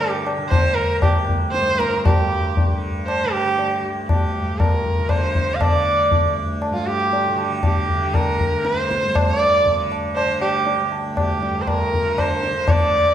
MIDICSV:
0, 0, Header, 1, 4, 480
1, 0, Start_track
1, 0, Tempo, 509338
1, 1927, Time_signature, 7, 2, 24, 8
1, 7200, Tempo, 503778
1, 12443, End_track
2, 0, Start_track
2, 0, Title_t, "Sarangi"
2, 0, Program_c, 0, 110
2, 0, Note_on_c, 0, 67, 68
2, 223, Note_off_c, 0, 67, 0
2, 459, Note_on_c, 0, 72, 95
2, 703, Note_on_c, 0, 70, 88
2, 717, Note_off_c, 0, 72, 0
2, 954, Note_off_c, 0, 70, 0
2, 961, Note_on_c, 0, 67, 78
2, 1186, Note_off_c, 0, 67, 0
2, 1430, Note_on_c, 0, 72, 98
2, 1682, Note_on_c, 0, 70, 94
2, 1696, Note_off_c, 0, 72, 0
2, 1925, Note_off_c, 0, 70, 0
2, 1932, Note_on_c, 0, 67, 86
2, 2613, Note_off_c, 0, 67, 0
2, 2888, Note_on_c, 0, 72, 88
2, 3127, Note_on_c, 0, 67, 95
2, 3141, Note_off_c, 0, 72, 0
2, 3608, Note_off_c, 0, 67, 0
2, 3849, Note_on_c, 0, 67, 70
2, 4324, Note_on_c, 0, 70, 78
2, 4338, Note_off_c, 0, 67, 0
2, 4797, Note_on_c, 0, 72, 85
2, 4811, Note_off_c, 0, 70, 0
2, 5224, Note_on_c, 0, 77, 65
2, 5238, Note_off_c, 0, 72, 0
2, 5289, Note_on_c, 0, 74, 100
2, 5303, Note_off_c, 0, 77, 0
2, 6005, Note_off_c, 0, 74, 0
2, 6345, Note_on_c, 0, 65, 80
2, 6474, Note_on_c, 0, 67, 95
2, 6488, Note_off_c, 0, 65, 0
2, 7074, Note_off_c, 0, 67, 0
2, 7198, Note_on_c, 0, 67, 79
2, 7680, Note_on_c, 0, 70, 86
2, 7695, Note_off_c, 0, 67, 0
2, 8169, Note_on_c, 0, 72, 94
2, 8183, Note_off_c, 0, 70, 0
2, 8654, Note_off_c, 0, 72, 0
2, 8654, Note_on_c, 0, 72, 119
2, 8864, Note_off_c, 0, 72, 0
2, 8864, Note_on_c, 0, 74, 119
2, 9369, Note_off_c, 0, 74, 0
2, 9596, Note_on_c, 0, 72, 99
2, 9823, Note_off_c, 0, 72, 0
2, 9839, Note_on_c, 0, 67, 85
2, 10288, Note_off_c, 0, 67, 0
2, 10567, Note_on_c, 0, 67, 74
2, 10985, Note_on_c, 0, 72, 60
2, 10999, Note_off_c, 0, 67, 0
2, 11052, Note_on_c, 0, 70, 90
2, 11066, Note_off_c, 0, 72, 0
2, 11534, Note_on_c, 0, 72, 84
2, 11549, Note_off_c, 0, 70, 0
2, 12023, Note_on_c, 0, 74, 103
2, 12037, Note_off_c, 0, 72, 0
2, 12443, Note_off_c, 0, 74, 0
2, 12443, End_track
3, 0, Start_track
3, 0, Title_t, "Tanpura"
3, 0, Program_c, 1, 104
3, 0, Note_on_c, 1, 38, 56
3, 0, Note_on_c, 1, 43, 57
3, 0, Note_on_c, 1, 50, 62
3, 357, Note_off_c, 1, 50, 0
3, 357, Note_on_c, 1, 50, 62
3, 911, Note_off_c, 1, 38, 0
3, 915, Note_on_c, 1, 38, 59
3, 1478, Note_off_c, 1, 43, 0
3, 1482, Note_on_c, 1, 43, 61
3, 1949, Note_off_c, 1, 43, 0
3, 1949, Note_on_c, 1, 43, 62
3, 2515, Note_off_c, 1, 50, 0
3, 2515, Note_on_c, 1, 50, 58
3, 3048, Note_off_c, 1, 50, 0
3, 3048, Note_on_c, 1, 50, 55
3, 3583, Note_off_c, 1, 38, 0
3, 3587, Note_on_c, 1, 38, 56
3, 4144, Note_off_c, 1, 43, 0
3, 4144, Note_on_c, 1, 43, 58
3, 4702, Note_off_c, 1, 50, 0
3, 4702, Note_on_c, 1, 50, 57
3, 5224, Note_off_c, 1, 50, 0
3, 5224, Note_on_c, 1, 50, 58
3, 5781, Note_off_c, 1, 38, 0
3, 5785, Note_on_c, 1, 38, 65
3, 6305, Note_off_c, 1, 43, 0
3, 6308, Note_on_c, 1, 43, 68
3, 6865, Note_off_c, 1, 50, 0
3, 6865, Note_on_c, 1, 50, 63
3, 7423, Note_off_c, 1, 50, 0
3, 7423, Note_on_c, 1, 50, 64
3, 7975, Note_off_c, 1, 38, 0
3, 7978, Note_on_c, 1, 38, 64
3, 8521, Note_off_c, 1, 43, 0
3, 8525, Note_on_c, 1, 43, 62
3, 9105, Note_off_c, 1, 50, 0
3, 9105, Note_on_c, 1, 50, 64
3, 9628, Note_off_c, 1, 50, 0
3, 9628, Note_on_c, 1, 50, 65
3, 10173, Note_off_c, 1, 38, 0
3, 10177, Note_on_c, 1, 38, 62
3, 10745, Note_off_c, 1, 43, 0
3, 10749, Note_on_c, 1, 43, 61
3, 11296, Note_off_c, 1, 50, 0
3, 11296, Note_on_c, 1, 50, 58
3, 11841, Note_off_c, 1, 50, 0
3, 11841, Note_on_c, 1, 50, 57
3, 12365, Note_off_c, 1, 38, 0
3, 12368, Note_on_c, 1, 38, 61
3, 12443, Note_off_c, 1, 38, 0
3, 12443, Note_off_c, 1, 43, 0
3, 12443, Note_off_c, 1, 50, 0
3, 12443, End_track
4, 0, Start_track
4, 0, Title_t, "Tabla"
4, 9, Note_on_c, 9, 63, 89
4, 103, Note_off_c, 9, 63, 0
4, 251, Note_on_c, 9, 60, 64
4, 345, Note_off_c, 9, 60, 0
4, 487, Note_on_c, 9, 60, 77
4, 487, Note_on_c, 9, 64, 82
4, 581, Note_off_c, 9, 60, 0
4, 581, Note_off_c, 9, 64, 0
4, 962, Note_on_c, 9, 60, 82
4, 962, Note_on_c, 9, 64, 74
4, 1056, Note_off_c, 9, 60, 0
4, 1056, Note_off_c, 9, 64, 0
4, 1214, Note_on_c, 9, 64, 61
4, 1308, Note_off_c, 9, 64, 0
4, 1454, Note_on_c, 9, 62, 83
4, 1548, Note_off_c, 9, 62, 0
4, 1578, Note_on_c, 9, 62, 59
4, 1672, Note_off_c, 9, 62, 0
4, 1698, Note_on_c, 9, 37, 67
4, 1792, Note_off_c, 9, 37, 0
4, 1823, Note_on_c, 9, 62, 58
4, 1917, Note_off_c, 9, 62, 0
4, 1937, Note_on_c, 9, 60, 102
4, 1937, Note_on_c, 9, 64, 89
4, 2031, Note_off_c, 9, 60, 0
4, 2031, Note_off_c, 9, 64, 0
4, 2422, Note_on_c, 9, 63, 72
4, 2422, Note_on_c, 9, 64, 67
4, 2516, Note_off_c, 9, 63, 0
4, 2516, Note_off_c, 9, 64, 0
4, 2905, Note_on_c, 9, 60, 74
4, 2999, Note_off_c, 9, 60, 0
4, 3382, Note_on_c, 9, 63, 83
4, 3476, Note_off_c, 9, 63, 0
4, 3857, Note_on_c, 9, 60, 79
4, 3857, Note_on_c, 9, 64, 71
4, 3951, Note_off_c, 9, 60, 0
4, 3951, Note_off_c, 9, 64, 0
4, 4334, Note_on_c, 9, 60, 80
4, 4334, Note_on_c, 9, 64, 72
4, 4428, Note_off_c, 9, 60, 0
4, 4428, Note_off_c, 9, 64, 0
4, 4573, Note_on_c, 9, 64, 58
4, 4668, Note_off_c, 9, 64, 0
4, 4798, Note_on_c, 9, 60, 68
4, 4798, Note_on_c, 9, 64, 70
4, 4892, Note_off_c, 9, 60, 0
4, 4892, Note_off_c, 9, 64, 0
4, 5043, Note_on_c, 9, 64, 52
4, 5137, Note_off_c, 9, 64, 0
4, 5284, Note_on_c, 9, 60, 99
4, 5284, Note_on_c, 9, 64, 91
4, 5378, Note_off_c, 9, 60, 0
4, 5378, Note_off_c, 9, 64, 0
4, 5761, Note_on_c, 9, 63, 74
4, 5761, Note_on_c, 9, 64, 69
4, 5856, Note_off_c, 9, 63, 0
4, 5856, Note_off_c, 9, 64, 0
4, 6237, Note_on_c, 9, 60, 78
4, 6331, Note_off_c, 9, 60, 0
4, 6720, Note_on_c, 9, 63, 82
4, 6814, Note_off_c, 9, 63, 0
4, 6952, Note_on_c, 9, 60, 58
4, 7046, Note_off_c, 9, 60, 0
4, 7191, Note_on_c, 9, 60, 78
4, 7191, Note_on_c, 9, 64, 67
4, 7286, Note_off_c, 9, 60, 0
4, 7286, Note_off_c, 9, 64, 0
4, 7440, Note_on_c, 9, 64, 58
4, 7535, Note_off_c, 9, 64, 0
4, 7677, Note_on_c, 9, 60, 72
4, 7677, Note_on_c, 9, 64, 69
4, 7772, Note_off_c, 9, 60, 0
4, 7772, Note_off_c, 9, 64, 0
4, 7922, Note_on_c, 9, 64, 55
4, 8017, Note_off_c, 9, 64, 0
4, 8159, Note_on_c, 9, 62, 72
4, 8255, Note_off_c, 9, 62, 0
4, 8277, Note_on_c, 9, 62, 59
4, 8372, Note_off_c, 9, 62, 0
4, 8410, Note_on_c, 9, 37, 66
4, 8505, Note_off_c, 9, 37, 0
4, 8523, Note_on_c, 9, 62, 53
4, 8618, Note_off_c, 9, 62, 0
4, 8643, Note_on_c, 9, 60, 95
4, 8643, Note_on_c, 9, 64, 91
4, 8738, Note_off_c, 9, 60, 0
4, 8738, Note_off_c, 9, 64, 0
4, 9127, Note_on_c, 9, 63, 77
4, 9127, Note_on_c, 9, 64, 70
4, 9222, Note_off_c, 9, 63, 0
4, 9222, Note_off_c, 9, 64, 0
4, 9371, Note_on_c, 9, 60, 60
4, 9466, Note_off_c, 9, 60, 0
4, 9610, Note_on_c, 9, 60, 68
4, 9705, Note_off_c, 9, 60, 0
4, 9843, Note_on_c, 9, 60, 61
4, 9939, Note_off_c, 9, 60, 0
4, 10084, Note_on_c, 9, 63, 71
4, 10179, Note_off_c, 9, 63, 0
4, 10325, Note_on_c, 9, 60, 57
4, 10421, Note_off_c, 9, 60, 0
4, 10563, Note_on_c, 9, 60, 78
4, 10563, Note_on_c, 9, 64, 71
4, 10659, Note_off_c, 9, 60, 0
4, 10659, Note_off_c, 9, 64, 0
4, 10807, Note_on_c, 9, 62, 61
4, 10902, Note_off_c, 9, 62, 0
4, 11044, Note_on_c, 9, 60, 76
4, 11044, Note_on_c, 9, 64, 70
4, 11139, Note_off_c, 9, 60, 0
4, 11139, Note_off_c, 9, 64, 0
4, 11292, Note_on_c, 9, 64, 58
4, 11388, Note_off_c, 9, 64, 0
4, 11527, Note_on_c, 9, 60, 78
4, 11527, Note_on_c, 9, 64, 68
4, 11622, Note_off_c, 9, 60, 0
4, 11622, Note_off_c, 9, 64, 0
4, 11768, Note_on_c, 9, 62, 59
4, 11863, Note_off_c, 9, 62, 0
4, 11998, Note_on_c, 9, 60, 90
4, 11998, Note_on_c, 9, 64, 86
4, 12094, Note_off_c, 9, 60, 0
4, 12094, Note_off_c, 9, 64, 0
4, 12443, End_track
0, 0, End_of_file